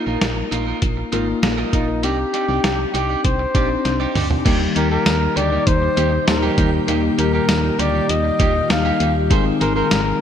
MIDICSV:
0, 0, Header, 1, 8, 480
1, 0, Start_track
1, 0, Key_signature, -3, "major"
1, 0, Tempo, 606061
1, 1611, Time_signature, 4, 2, 24, 8
1, 8086, End_track
2, 0, Start_track
2, 0, Title_t, "Flugelhorn"
2, 0, Program_c, 0, 56
2, 1380, Note_on_c, 0, 63, 78
2, 1614, Note_on_c, 0, 67, 86
2, 1626, Note_off_c, 0, 63, 0
2, 2331, Note_off_c, 0, 67, 0
2, 2335, Note_on_c, 0, 67, 87
2, 2574, Note_on_c, 0, 72, 91
2, 2586, Note_off_c, 0, 67, 0
2, 3293, Note_off_c, 0, 72, 0
2, 3773, Note_on_c, 0, 70, 85
2, 3883, Note_off_c, 0, 70, 0
2, 3893, Note_on_c, 0, 70, 98
2, 4250, Note_on_c, 0, 74, 102
2, 4262, Note_off_c, 0, 70, 0
2, 4491, Note_on_c, 0, 72, 101
2, 4503, Note_off_c, 0, 74, 0
2, 4969, Note_off_c, 0, 72, 0
2, 4973, Note_on_c, 0, 70, 78
2, 5307, Note_off_c, 0, 70, 0
2, 5694, Note_on_c, 0, 70, 81
2, 5804, Note_off_c, 0, 70, 0
2, 5814, Note_on_c, 0, 70, 84
2, 6178, Note_on_c, 0, 74, 94
2, 6190, Note_off_c, 0, 70, 0
2, 6416, Note_on_c, 0, 75, 98
2, 6428, Note_off_c, 0, 74, 0
2, 6896, Note_on_c, 0, 77, 99
2, 6908, Note_off_c, 0, 75, 0
2, 7254, Note_off_c, 0, 77, 0
2, 7611, Note_on_c, 0, 70, 92
2, 7723, Note_off_c, 0, 70, 0
2, 7731, Note_on_c, 0, 70, 95
2, 8086, Note_off_c, 0, 70, 0
2, 8086, End_track
3, 0, Start_track
3, 0, Title_t, "Clean electric guitar"
3, 0, Program_c, 1, 27
3, 49, Note_on_c, 1, 70, 66
3, 54, Note_on_c, 1, 65, 59
3, 59, Note_on_c, 1, 63, 50
3, 138, Note_off_c, 1, 70, 0
3, 140, Note_off_c, 1, 65, 0
3, 142, Note_off_c, 1, 63, 0
3, 407, Note_on_c, 1, 63, 69
3, 413, Note_on_c, 1, 65, 70
3, 417, Note_on_c, 1, 70, 77
3, 518, Note_off_c, 1, 70, 0
3, 521, Note_off_c, 1, 63, 0
3, 524, Note_off_c, 1, 65, 0
3, 528, Note_on_c, 1, 70, 60
3, 533, Note_on_c, 1, 65, 59
3, 538, Note_on_c, 1, 63, 48
3, 617, Note_off_c, 1, 70, 0
3, 620, Note_off_c, 1, 65, 0
3, 622, Note_off_c, 1, 63, 0
3, 889, Note_on_c, 1, 63, 74
3, 894, Note_on_c, 1, 65, 78
3, 899, Note_on_c, 1, 70, 82
3, 1000, Note_off_c, 1, 70, 0
3, 1002, Note_off_c, 1, 63, 0
3, 1004, Note_off_c, 1, 65, 0
3, 1247, Note_on_c, 1, 70, 82
3, 1253, Note_on_c, 1, 65, 78
3, 1257, Note_on_c, 1, 63, 67
3, 1359, Note_off_c, 1, 63, 0
3, 1361, Note_off_c, 1, 70, 0
3, 1364, Note_off_c, 1, 65, 0
3, 1368, Note_on_c, 1, 63, 56
3, 1374, Note_on_c, 1, 65, 63
3, 1378, Note_on_c, 1, 70, 61
3, 1457, Note_off_c, 1, 63, 0
3, 1460, Note_off_c, 1, 65, 0
3, 1462, Note_off_c, 1, 70, 0
3, 1609, Note_on_c, 1, 63, 85
3, 1614, Note_on_c, 1, 67, 89
3, 1619, Note_on_c, 1, 74, 93
3, 1720, Note_off_c, 1, 74, 0
3, 1722, Note_off_c, 1, 63, 0
3, 1725, Note_off_c, 1, 67, 0
3, 1849, Note_on_c, 1, 63, 67
3, 1853, Note_on_c, 1, 67, 69
3, 1857, Note_on_c, 1, 74, 71
3, 1937, Note_off_c, 1, 63, 0
3, 1940, Note_off_c, 1, 67, 0
3, 1942, Note_off_c, 1, 74, 0
3, 1967, Note_on_c, 1, 74, 60
3, 1973, Note_on_c, 1, 67, 59
3, 1977, Note_on_c, 1, 63, 48
3, 2057, Note_off_c, 1, 74, 0
3, 2059, Note_off_c, 1, 67, 0
3, 2061, Note_off_c, 1, 63, 0
3, 2327, Note_on_c, 1, 63, 70
3, 2332, Note_on_c, 1, 67, 73
3, 2336, Note_on_c, 1, 74, 80
3, 2438, Note_off_c, 1, 74, 0
3, 2441, Note_off_c, 1, 63, 0
3, 2444, Note_off_c, 1, 67, 0
3, 2447, Note_on_c, 1, 74, 63
3, 2453, Note_on_c, 1, 67, 52
3, 2457, Note_on_c, 1, 63, 54
3, 2537, Note_off_c, 1, 74, 0
3, 2539, Note_off_c, 1, 67, 0
3, 2541, Note_off_c, 1, 63, 0
3, 2808, Note_on_c, 1, 63, 82
3, 2813, Note_on_c, 1, 67, 80
3, 2817, Note_on_c, 1, 74, 98
3, 2919, Note_off_c, 1, 74, 0
3, 2921, Note_off_c, 1, 63, 0
3, 2924, Note_off_c, 1, 67, 0
3, 3167, Note_on_c, 1, 74, 72
3, 3172, Note_on_c, 1, 67, 68
3, 3176, Note_on_c, 1, 63, 64
3, 3276, Note_off_c, 1, 63, 0
3, 3281, Note_off_c, 1, 74, 0
3, 3283, Note_off_c, 1, 67, 0
3, 3286, Note_on_c, 1, 63, 61
3, 3291, Note_on_c, 1, 67, 64
3, 3295, Note_on_c, 1, 74, 73
3, 3376, Note_off_c, 1, 63, 0
3, 3379, Note_off_c, 1, 67, 0
3, 3381, Note_off_c, 1, 74, 0
3, 3526, Note_on_c, 1, 58, 99
3, 3531, Note_on_c, 1, 63, 98
3, 3535, Note_on_c, 1, 67, 107
3, 3639, Note_off_c, 1, 67, 0
3, 3640, Note_off_c, 1, 58, 0
3, 3643, Note_off_c, 1, 63, 0
3, 3767, Note_on_c, 1, 58, 63
3, 3772, Note_on_c, 1, 63, 72
3, 3776, Note_on_c, 1, 67, 71
3, 3856, Note_off_c, 1, 58, 0
3, 3859, Note_off_c, 1, 63, 0
3, 3861, Note_off_c, 1, 67, 0
3, 3887, Note_on_c, 1, 67, 64
3, 3892, Note_on_c, 1, 63, 60
3, 3896, Note_on_c, 1, 58, 52
3, 3977, Note_off_c, 1, 67, 0
3, 3979, Note_off_c, 1, 63, 0
3, 3981, Note_off_c, 1, 58, 0
3, 4247, Note_on_c, 1, 58, 76
3, 4252, Note_on_c, 1, 63, 82
3, 4257, Note_on_c, 1, 67, 87
3, 4359, Note_off_c, 1, 67, 0
3, 4361, Note_off_c, 1, 58, 0
3, 4364, Note_off_c, 1, 63, 0
3, 4368, Note_on_c, 1, 67, 62
3, 4374, Note_on_c, 1, 63, 61
3, 4378, Note_on_c, 1, 58, 55
3, 4457, Note_off_c, 1, 67, 0
3, 4460, Note_off_c, 1, 63, 0
3, 4462, Note_off_c, 1, 58, 0
3, 4728, Note_on_c, 1, 58, 76
3, 4733, Note_on_c, 1, 63, 91
3, 4737, Note_on_c, 1, 67, 91
3, 4839, Note_off_c, 1, 67, 0
3, 4841, Note_off_c, 1, 58, 0
3, 4844, Note_off_c, 1, 63, 0
3, 5088, Note_on_c, 1, 67, 84
3, 5093, Note_on_c, 1, 63, 76
3, 5097, Note_on_c, 1, 58, 64
3, 5199, Note_off_c, 1, 58, 0
3, 5201, Note_off_c, 1, 67, 0
3, 5204, Note_off_c, 1, 63, 0
3, 5209, Note_on_c, 1, 58, 58
3, 5214, Note_on_c, 1, 63, 69
3, 5218, Note_on_c, 1, 67, 73
3, 5297, Note_off_c, 1, 58, 0
3, 5300, Note_off_c, 1, 63, 0
3, 5302, Note_off_c, 1, 67, 0
3, 5449, Note_on_c, 1, 58, 96
3, 5454, Note_on_c, 1, 63, 97
3, 5458, Note_on_c, 1, 67, 110
3, 5559, Note_off_c, 1, 67, 0
3, 5562, Note_off_c, 1, 58, 0
3, 5565, Note_off_c, 1, 63, 0
3, 5688, Note_on_c, 1, 58, 67
3, 5693, Note_on_c, 1, 63, 68
3, 5698, Note_on_c, 1, 67, 70
3, 5777, Note_off_c, 1, 58, 0
3, 5780, Note_off_c, 1, 63, 0
3, 5782, Note_off_c, 1, 67, 0
3, 5807, Note_on_c, 1, 67, 66
3, 5812, Note_on_c, 1, 63, 61
3, 5817, Note_on_c, 1, 58, 52
3, 5897, Note_off_c, 1, 67, 0
3, 5899, Note_off_c, 1, 63, 0
3, 5902, Note_off_c, 1, 58, 0
3, 6169, Note_on_c, 1, 58, 78
3, 6174, Note_on_c, 1, 63, 88
3, 6178, Note_on_c, 1, 67, 87
3, 6279, Note_off_c, 1, 67, 0
3, 6282, Note_off_c, 1, 58, 0
3, 6284, Note_off_c, 1, 63, 0
3, 6288, Note_on_c, 1, 67, 58
3, 6294, Note_on_c, 1, 63, 57
3, 6298, Note_on_c, 1, 58, 49
3, 6377, Note_off_c, 1, 67, 0
3, 6380, Note_off_c, 1, 63, 0
3, 6382, Note_off_c, 1, 58, 0
3, 6648, Note_on_c, 1, 58, 76
3, 6653, Note_on_c, 1, 63, 94
3, 6657, Note_on_c, 1, 67, 92
3, 6760, Note_off_c, 1, 67, 0
3, 6761, Note_off_c, 1, 58, 0
3, 6764, Note_off_c, 1, 63, 0
3, 7009, Note_on_c, 1, 67, 93
3, 7014, Note_on_c, 1, 63, 86
3, 7018, Note_on_c, 1, 58, 72
3, 7118, Note_off_c, 1, 58, 0
3, 7122, Note_off_c, 1, 67, 0
3, 7124, Note_off_c, 1, 63, 0
3, 7128, Note_on_c, 1, 58, 70
3, 7133, Note_on_c, 1, 63, 66
3, 7137, Note_on_c, 1, 67, 78
3, 7217, Note_off_c, 1, 58, 0
3, 7220, Note_off_c, 1, 63, 0
3, 7221, Note_off_c, 1, 67, 0
3, 7368, Note_on_c, 1, 63, 94
3, 7373, Note_on_c, 1, 68, 93
3, 7378, Note_on_c, 1, 72, 106
3, 7481, Note_off_c, 1, 63, 0
3, 7481, Note_off_c, 1, 72, 0
3, 7484, Note_off_c, 1, 68, 0
3, 7608, Note_on_c, 1, 63, 62
3, 7614, Note_on_c, 1, 68, 76
3, 7618, Note_on_c, 1, 72, 72
3, 7697, Note_off_c, 1, 63, 0
3, 7700, Note_off_c, 1, 68, 0
3, 7702, Note_off_c, 1, 72, 0
3, 7728, Note_on_c, 1, 72, 73
3, 7733, Note_on_c, 1, 68, 67
3, 7737, Note_on_c, 1, 63, 56
3, 7817, Note_off_c, 1, 72, 0
3, 7819, Note_off_c, 1, 68, 0
3, 7821, Note_off_c, 1, 63, 0
3, 8086, End_track
4, 0, Start_track
4, 0, Title_t, "Ambient pad"
4, 0, Program_c, 2, 92
4, 3531, Note_on_c, 2, 46, 79
4, 3531, Note_on_c, 2, 55, 76
4, 3531, Note_on_c, 2, 63, 77
4, 3533, Note_on_c, 2, 67, 94
4, 5431, Note_off_c, 2, 63, 0
4, 5453, Note_on_c, 2, 65, 72
4, 7339, Note_off_c, 2, 46, 0
4, 7339, Note_off_c, 2, 55, 0
4, 7340, Note_off_c, 2, 67, 0
4, 7353, Note_off_c, 2, 65, 0
4, 7371, Note_on_c, 2, 48, 81
4, 7371, Note_on_c, 2, 56, 73
4, 7371, Note_on_c, 2, 68, 91
4, 7372, Note_on_c, 2, 63, 76
4, 8086, Note_off_c, 2, 48, 0
4, 8086, Note_off_c, 2, 56, 0
4, 8086, Note_off_c, 2, 63, 0
4, 8086, Note_off_c, 2, 68, 0
4, 8086, End_track
5, 0, Start_track
5, 0, Title_t, "Tine electric piano"
5, 0, Program_c, 3, 4
5, 0, Control_c, 3, 64, 127
5, 0, Note_on_c, 3, 58, 80
5, 0, Note_on_c, 3, 63, 69
5, 0, Note_on_c, 3, 65, 69
5, 0, Note_on_c, 3, 70, 88
5, 518, Note_off_c, 3, 58, 0
5, 520, Note_off_c, 3, 63, 0
5, 521, Note_off_c, 3, 65, 0
5, 523, Note_off_c, 3, 70, 0
5, 888, Note_on_c, 3, 58, 83
5, 890, Note_on_c, 3, 63, 78
5, 894, Note_on_c, 3, 65, 76
5, 897, Note_on_c, 3, 70, 96
5, 1512, Note_off_c, 3, 58, 0
5, 1513, Note_off_c, 3, 63, 0
5, 1514, Note_off_c, 3, 65, 0
5, 1516, Note_off_c, 3, 70, 0
5, 1608, Note_on_c, 3, 60, 65
5, 1611, Note_on_c, 3, 62, 58
5, 1614, Note_on_c, 3, 63, 58
5, 1617, Note_on_c, 3, 67, 73
5, 1622, Control_c, 3, 64, 0
5, 1750, Control_c, 3, 64, 127
5, 2439, Note_off_c, 3, 60, 0
5, 2440, Note_off_c, 3, 62, 0
5, 2442, Note_off_c, 3, 63, 0
5, 2443, Note_off_c, 3, 67, 0
5, 2804, Note_on_c, 3, 60, 74
5, 2807, Note_on_c, 3, 62, 66
5, 2811, Note_on_c, 3, 63, 69
5, 2814, Note_on_c, 3, 67, 74
5, 3430, Note_off_c, 3, 60, 0
5, 3431, Note_off_c, 3, 62, 0
5, 3433, Note_off_c, 3, 63, 0
5, 3434, Note_off_c, 3, 67, 0
5, 3524, Note_on_c, 3, 51, 85
5, 3525, Note_on_c, 3, 55, 75
5, 3528, Note_on_c, 3, 58, 79
5, 3530, Note_on_c, 3, 63, 74
5, 3532, Note_on_c, 3, 67, 95
5, 3541, Control_c, 3, 64, 0
5, 3701, Control_c, 3, 64, 127
5, 4357, Note_off_c, 3, 51, 0
5, 4358, Note_off_c, 3, 55, 0
5, 4359, Note_off_c, 3, 58, 0
5, 4360, Note_off_c, 3, 63, 0
5, 4361, Note_off_c, 3, 67, 0
5, 4964, Note_on_c, 3, 51, 72
5, 4968, Note_on_c, 3, 55, 66
5, 4970, Note_on_c, 3, 58, 64
5, 4973, Note_on_c, 3, 63, 65
5, 4975, Note_on_c, 3, 67, 83
5, 5382, Note_off_c, 3, 51, 0
5, 5384, Note_off_c, 3, 55, 0
5, 5385, Note_off_c, 3, 58, 0
5, 5387, Note_off_c, 3, 63, 0
5, 5388, Note_off_c, 3, 67, 0
5, 5447, Note_on_c, 3, 51, 81
5, 5449, Note_on_c, 3, 55, 75
5, 5451, Note_on_c, 3, 58, 79
5, 5453, Note_on_c, 3, 63, 72
5, 5456, Note_on_c, 3, 67, 90
5, 6279, Note_off_c, 3, 51, 0
5, 6279, Note_off_c, 3, 55, 0
5, 6281, Note_off_c, 3, 58, 0
5, 6282, Note_off_c, 3, 63, 0
5, 6283, Note_off_c, 3, 67, 0
5, 6887, Note_on_c, 3, 51, 76
5, 6888, Note_on_c, 3, 55, 69
5, 6891, Note_on_c, 3, 58, 70
5, 6893, Note_on_c, 3, 63, 65
5, 6896, Note_on_c, 3, 67, 81
5, 7304, Note_off_c, 3, 51, 0
5, 7304, Note_off_c, 3, 55, 0
5, 7306, Note_off_c, 3, 58, 0
5, 7307, Note_off_c, 3, 63, 0
5, 7308, Note_off_c, 3, 67, 0
5, 7366, Note_on_c, 3, 51, 85
5, 7368, Note_on_c, 3, 56, 78
5, 7370, Note_on_c, 3, 60, 74
5, 7374, Note_on_c, 3, 63, 78
5, 7375, Note_on_c, 3, 68, 89
5, 7382, Control_c, 3, 64, 0
5, 7499, Control_c, 3, 64, 127
5, 8086, Note_off_c, 3, 51, 0
5, 8086, Note_off_c, 3, 56, 0
5, 8086, Note_off_c, 3, 60, 0
5, 8086, Note_off_c, 3, 63, 0
5, 8086, Note_off_c, 3, 68, 0
5, 8086, End_track
6, 0, Start_track
6, 0, Title_t, "FM bass"
6, 0, Program_c, 4, 39
6, 53, Note_on_c, 4, 34, 90
6, 138, Note_off_c, 4, 34, 0
6, 171, Note_on_c, 4, 34, 104
6, 344, Note_off_c, 4, 34, 0
6, 410, Note_on_c, 4, 34, 88
6, 583, Note_off_c, 4, 34, 0
6, 652, Note_on_c, 4, 34, 99
6, 824, Note_off_c, 4, 34, 0
6, 891, Note_on_c, 4, 32, 91
6, 1064, Note_off_c, 4, 32, 0
6, 1129, Note_on_c, 4, 34, 90
6, 1303, Note_off_c, 4, 34, 0
6, 1372, Note_on_c, 4, 34, 86
6, 1610, Note_on_c, 4, 36, 99
6, 1622, Note_off_c, 4, 34, 0
6, 1783, Note_off_c, 4, 36, 0
6, 1968, Note_on_c, 4, 36, 100
6, 2056, Note_off_c, 4, 36, 0
6, 2091, Note_on_c, 4, 36, 97
6, 2263, Note_off_c, 4, 36, 0
6, 2330, Note_on_c, 4, 36, 98
6, 2503, Note_off_c, 4, 36, 0
6, 2571, Note_on_c, 4, 36, 93
6, 2744, Note_off_c, 4, 36, 0
6, 2810, Note_on_c, 4, 34, 76
6, 2983, Note_off_c, 4, 34, 0
6, 3050, Note_on_c, 4, 36, 100
6, 3223, Note_off_c, 4, 36, 0
6, 3290, Note_on_c, 4, 38, 91
6, 3463, Note_off_c, 4, 38, 0
6, 3529, Note_on_c, 4, 39, 108
6, 3702, Note_off_c, 4, 39, 0
6, 3770, Note_on_c, 4, 39, 99
6, 3943, Note_off_c, 4, 39, 0
6, 4011, Note_on_c, 4, 39, 100
6, 4184, Note_off_c, 4, 39, 0
6, 4250, Note_on_c, 4, 38, 94
6, 4423, Note_off_c, 4, 38, 0
6, 4491, Note_on_c, 4, 39, 115
6, 4664, Note_off_c, 4, 39, 0
6, 4730, Note_on_c, 4, 39, 105
6, 4903, Note_off_c, 4, 39, 0
6, 4972, Note_on_c, 4, 39, 105
6, 5145, Note_off_c, 4, 39, 0
6, 5210, Note_on_c, 4, 39, 107
6, 5383, Note_off_c, 4, 39, 0
6, 5451, Note_on_c, 4, 39, 106
6, 5624, Note_off_c, 4, 39, 0
6, 5690, Note_on_c, 4, 39, 100
6, 5863, Note_off_c, 4, 39, 0
6, 5929, Note_on_c, 4, 39, 104
6, 6102, Note_off_c, 4, 39, 0
6, 6169, Note_on_c, 4, 38, 89
6, 6343, Note_off_c, 4, 38, 0
6, 6411, Note_on_c, 4, 39, 108
6, 6584, Note_off_c, 4, 39, 0
6, 6650, Note_on_c, 4, 39, 96
6, 6823, Note_off_c, 4, 39, 0
6, 6890, Note_on_c, 4, 39, 109
6, 7063, Note_off_c, 4, 39, 0
6, 7131, Note_on_c, 4, 39, 101
6, 7372, Note_on_c, 4, 32, 107
6, 7383, Note_off_c, 4, 39, 0
6, 7544, Note_off_c, 4, 32, 0
6, 7613, Note_on_c, 4, 32, 96
6, 7785, Note_off_c, 4, 32, 0
6, 7852, Note_on_c, 4, 32, 106
6, 8024, Note_off_c, 4, 32, 0
6, 8086, End_track
7, 0, Start_track
7, 0, Title_t, "Muted clean electric guitar strokes"
7, 170, Note_on_c, 9, 29, 42
7, 249, Note_off_c, 9, 29, 0
7, 289, Note_on_c, 9, 29, 48
7, 369, Note_off_c, 9, 29, 0
7, 770, Note_on_c, 9, 29, 51
7, 849, Note_off_c, 9, 29, 0
7, 1010, Note_on_c, 9, 29, 43
7, 1089, Note_off_c, 9, 29, 0
7, 1129, Note_on_c, 9, 29, 50
7, 1209, Note_off_c, 9, 29, 0
7, 1490, Note_on_c, 9, 29, 47
7, 1569, Note_off_c, 9, 29, 0
7, 1729, Note_on_c, 9, 29, 48
7, 1809, Note_off_c, 9, 29, 0
7, 2209, Note_on_c, 9, 29, 42
7, 2288, Note_off_c, 9, 29, 0
7, 2688, Note_on_c, 9, 29, 49
7, 2768, Note_off_c, 9, 29, 0
7, 2928, Note_on_c, 9, 29, 38
7, 3007, Note_off_c, 9, 29, 0
7, 3048, Note_on_c, 9, 29, 36
7, 3128, Note_off_c, 9, 29, 0
7, 3407, Note_on_c, 9, 29, 42
7, 3486, Note_off_c, 9, 29, 0
7, 3648, Note_on_c, 9, 29, 43
7, 3728, Note_off_c, 9, 29, 0
7, 4008, Note_on_c, 9, 29, 45
7, 4088, Note_off_c, 9, 29, 0
7, 4129, Note_on_c, 9, 29, 52
7, 4208, Note_off_c, 9, 29, 0
7, 4609, Note_on_c, 9, 29, 43
7, 4688, Note_off_c, 9, 29, 0
7, 4849, Note_on_c, 9, 29, 56
7, 4928, Note_off_c, 9, 29, 0
7, 4970, Note_on_c, 9, 29, 45
7, 5049, Note_off_c, 9, 29, 0
7, 5336, Note_on_c, 9, 29, 34
7, 5415, Note_off_c, 9, 29, 0
7, 5569, Note_on_c, 9, 29, 38
7, 5648, Note_off_c, 9, 29, 0
7, 5930, Note_on_c, 9, 29, 41
7, 6009, Note_off_c, 9, 29, 0
7, 6049, Note_on_c, 9, 29, 49
7, 6128, Note_off_c, 9, 29, 0
7, 6529, Note_on_c, 9, 29, 45
7, 6608, Note_off_c, 9, 29, 0
7, 6770, Note_on_c, 9, 29, 53
7, 6849, Note_off_c, 9, 29, 0
7, 6890, Note_on_c, 9, 29, 51
7, 6969, Note_off_c, 9, 29, 0
7, 7248, Note_on_c, 9, 29, 43
7, 7328, Note_off_c, 9, 29, 0
7, 7490, Note_on_c, 9, 29, 46
7, 7569, Note_off_c, 9, 29, 0
7, 7968, Note_on_c, 9, 29, 43
7, 8047, Note_off_c, 9, 29, 0
7, 8086, End_track
8, 0, Start_track
8, 0, Title_t, "Drums"
8, 170, Note_on_c, 9, 38, 105
8, 171, Note_on_c, 9, 42, 89
8, 249, Note_off_c, 9, 38, 0
8, 250, Note_off_c, 9, 42, 0
8, 414, Note_on_c, 9, 42, 72
8, 493, Note_off_c, 9, 42, 0
8, 649, Note_on_c, 9, 42, 88
8, 651, Note_on_c, 9, 36, 82
8, 728, Note_off_c, 9, 42, 0
8, 731, Note_off_c, 9, 36, 0
8, 891, Note_on_c, 9, 42, 70
8, 970, Note_off_c, 9, 42, 0
8, 1132, Note_on_c, 9, 42, 68
8, 1134, Note_on_c, 9, 38, 105
8, 1211, Note_off_c, 9, 42, 0
8, 1213, Note_off_c, 9, 38, 0
8, 1371, Note_on_c, 9, 36, 79
8, 1372, Note_on_c, 9, 42, 74
8, 1450, Note_off_c, 9, 36, 0
8, 1451, Note_off_c, 9, 42, 0
8, 1611, Note_on_c, 9, 42, 76
8, 1690, Note_off_c, 9, 42, 0
8, 1852, Note_on_c, 9, 42, 64
8, 1931, Note_off_c, 9, 42, 0
8, 2091, Note_on_c, 9, 38, 105
8, 2092, Note_on_c, 9, 42, 88
8, 2170, Note_off_c, 9, 38, 0
8, 2171, Note_off_c, 9, 42, 0
8, 2334, Note_on_c, 9, 42, 73
8, 2413, Note_off_c, 9, 42, 0
8, 2570, Note_on_c, 9, 42, 86
8, 2571, Note_on_c, 9, 36, 87
8, 2650, Note_off_c, 9, 36, 0
8, 2650, Note_off_c, 9, 42, 0
8, 2810, Note_on_c, 9, 36, 90
8, 2810, Note_on_c, 9, 42, 73
8, 2889, Note_off_c, 9, 36, 0
8, 2889, Note_off_c, 9, 42, 0
8, 3050, Note_on_c, 9, 38, 50
8, 3051, Note_on_c, 9, 42, 70
8, 3129, Note_off_c, 9, 38, 0
8, 3130, Note_off_c, 9, 42, 0
8, 3290, Note_on_c, 9, 45, 80
8, 3290, Note_on_c, 9, 46, 78
8, 3370, Note_off_c, 9, 45, 0
8, 3370, Note_off_c, 9, 46, 0
8, 3410, Note_on_c, 9, 43, 84
8, 3489, Note_off_c, 9, 43, 0
8, 3530, Note_on_c, 9, 36, 115
8, 3530, Note_on_c, 9, 42, 84
8, 3530, Note_on_c, 9, 49, 97
8, 3609, Note_off_c, 9, 36, 0
8, 3609, Note_off_c, 9, 42, 0
8, 3609, Note_off_c, 9, 49, 0
8, 3770, Note_on_c, 9, 42, 68
8, 3849, Note_off_c, 9, 42, 0
8, 4008, Note_on_c, 9, 38, 113
8, 4008, Note_on_c, 9, 54, 73
8, 4009, Note_on_c, 9, 42, 95
8, 4087, Note_off_c, 9, 54, 0
8, 4088, Note_off_c, 9, 38, 0
8, 4089, Note_off_c, 9, 42, 0
8, 4252, Note_on_c, 9, 42, 76
8, 4332, Note_off_c, 9, 42, 0
8, 4489, Note_on_c, 9, 42, 100
8, 4491, Note_on_c, 9, 36, 89
8, 4568, Note_off_c, 9, 42, 0
8, 4570, Note_off_c, 9, 36, 0
8, 4730, Note_on_c, 9, 42, 71
8, 4809, Note_off_c, 9, 42, 0
8, 4970, Note_on_c, 9, 42, 73
8, 4971, Note_on_c, 9, 54, 67
8, 4972, Note_on_c, 9, 38, 116
8, 5049, Note_off_c, 9, 42, 0
8, 5050, Note_off_c, 9, 54, 0
8, 5051, Note_off_c, 9, 38, 0
8, 5210, Note_on_c, 9, 36, 87
8, 5210, Note_on_c, 9, 42, 80
8, 5289, Note_off_c, 9, 42, 0
8, 5290, Note_off_c, 9, 36, 0
8, 5450, Note_on_c, 9, 42, 83
8, 5530, Note_off_c, 9, 42, 0
8, 5691, Note_on_c, 9, 42, 73
8, 5770, Note_off_c, 9, 42, 0
8, 5929, Note_on_c, 9, 54, 72
8, 5930, Note_on_c, 9, 38, 112
8, 5931, Note_on_c, 9, 42, 102
8, 6009, Note_off_c, 9, 38, 0
8, 6009, Note_off_c, 9, 54, 0
8, 6010, Note_off_c, 9, 42, 0
8, 6173, Note_on_c, 9, 42, 79
8, 6252, Note_off_c, 9, 42, 0
8, 6411, Note_on_c, 9, 42, 91
8, 6490, Note_off_c, 9, 42, 0
8, 6650, Note_on_c, 9, 36, 94
8, 6650, Note_on_c, 9, 42, 75
8, 6729, Note_off_c, 9, 42, 0
8, 6730, Note_off_c, 9, 36, 0
8, 6890, Note_on_c, 9, 42, 78
8, 6891, Note_on_c, 9, 54, 68
8, 6892, Note_on_c, 9, 38, 121
8, 6970, Note_off_c, 9, 42, 0
8, 6970, Note_off_c, 9, 54, 0
8, 6971, Note_off_c, 9, 38, 0
8, 7130, Note_on_c, 9, 42, 80
8, 7209, Note_off_c, 9, 42, 0
8, 7371, Note_on_c, 9, 36, 112
8, 7371, Note_on_c, 9, 42, 83
8, 7450, Note_off_c, 9, 36, 0
8, 7450, Note_off_c, 9, 42, 0
8, 7612, Note_on_c, 9, 42, 68
8, 7691, Note_off_c, 9, 42, 0
8, 7850, Note_on_c, 9, 54, 70
8, 7851, Note_on_c, 9, 38, 119
8, 7852, Note_on_c, 9, 42, 103
8, 7930, Note_off_c, 9, 38, 0
8, 7930, Note_off_c, 9, 54, 0
8, 7931, Note_off_c, 9, 42, 0
8, 8086, End_track
0, 0, End_of_file